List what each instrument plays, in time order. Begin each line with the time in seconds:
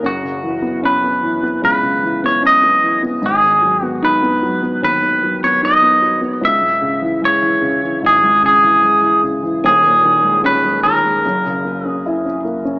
0.03 grand piano F#1 F#2, clean electric guitar F#4
0.23 grand piano C#3
0.43 grand piano E3
0.62 grand piano B3
0.83 grand piano C#4, clean electric guitar B4
1.04 grand piano B3
1.23 grand piano E3
1.43 grand piano B3
1.62 grand piano C#2 C#3, clean electric guitar B4
1.83 grand piano C#3
2.03 grand piano E3
2.23 grand piano B3, clean electric guitar C#5
2.42 grand piano C#4
2.47 clean electric guitar D#5
2.63 grand piano B3
2.83 grand piano E3
3.02 grand piano B3
3.22 grand piano G#1 G#2
3.26 clean electric guitar G#4
3.43 grand piano D#3
3.62 grand piano F#3
3.82 grand piano B3, clean electric guitar F#4
4.02 grand piano D#4, clean electric guitar B4
4.23 grand piano B3
4.43 grand piano F#3
4.62 grand piano B3
4.82 grand piano D#2 D#3, clean electric guitar B4
5.02 grand piano D#3
5.23 grand piano F#3
5.43 grand piano B3, clean electric guitar C#5
5.62 grand piano D#4, clean electric guitar D#5
5.82 grand piano B3
6.02 grand piano F#3
6.21 grand piano B3
6.41 grand piano C#2, clean electric guitar E5
6.61 grand piano G#2
6.81 grand piano C#3
7.02 grand piano E3
7.22 grand piano G#3, clean electric guitar C#5
7.42 grand piano E3
7.61 grand piano C#3
7.82 grand piano E3
8.02 grand piano G#1 G#2
8.06 clean electric guitar G#4
8.23 grand piano G#2
8.42 grand piano C#3, clean electric guitar G#4
8.63 grand piano E3
8.82 grand piano G#3
9.02 grand piano E3
9.23 grand piano C#3
9.43 grand piano E3
9.64 grand piano D#1 D#2, clean electric guitar G#4
9.84 grand piano A#2
10.04 grand piano D#3
10.23 grand piano G#3
10.44 grand piano C#4, clean electric guitar B4
10.65 grand piano G#3
10.83 grand piano D#3, clean electric guitar A#4
11.04 grand piano G#3
11.25 grand piano F#1 F#2
11.45 grand piano C#3
11.65 grand piano A#3
11.85 grand piano C#4, clean electric guitar G#4
12.06 grand piano E4
12.25 grand piano C#4
12.45 grand piano A#3
12.65 grand piano C#4